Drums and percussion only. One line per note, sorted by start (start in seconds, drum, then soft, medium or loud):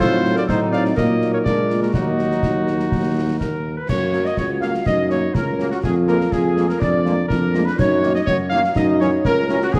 0.00 concert bass drum medium
0.00 snare medium
0.00 crash soft
0.25 snare medium
0.36 snare medium
0.49 concert bass drum medium
0.49 snare medium
0.73 snare medium
0.85 snare medium
0.97 concert bass drum medium
0.97 snare medium
1.21 snare medium
1.46 concert bass drum medium
1.46 snare medium
1.70 snare medium
1.83 snare medium
1.94 concert bass drum medium
1.94 snare medium
2.19 snare medium
2.31 snare medium
2.43 concert bass drum medium
2.43 snare medium
2.67 snare medium
2.80 snare medium
2.92 concert bass drum medium
2.92 snare medium
3.41 concert bass drum medium
3.41 snare medium
3.89 concert bass drum medium
3.89 snare medium
3.89 crash medium
4.13 snare medium
4.25 snare soft
4.37 concert bass drum medium
4.37 snare medium
4.62 snare medium
4.74 snare medium
4.86 concert bass drum medium
4.86 snare medium
5.10 snare medium
5.35 concert bass drum medium
5.35 snare medium
5.60 snare medium
5.72 snare medium
5.84 concert bass drum medium
5.84 snare medium
6.08 snare medium
6.21 snare medium
6.32 concert bass drum medium
6.32 snare medium
6.57 snare medium
6.70 snare medium
6.81 concert bass drum medium
6.81 snare medium
7.06 snare medium
7.30 concert bass drum medium
7.30 snare medium
7.54 snare medium
7.67 snare medium
7.79 concert bass drum medium
7.79 snare medium
7.79 crash soft
8.03 snare medium
8.15 snare medium
8.27 concert bass drum medium
8.27 snare medium
8.51 snare medium
8.64 snare medium
8.76 concert bass drum medium
8.76 snare medium
9.01 snare medium
9.25 concert bass drum medium
9.25 snare medium
9.49 snare medium
9.62 snare medium
9.74 concert bass drum loud
9.74 snare medium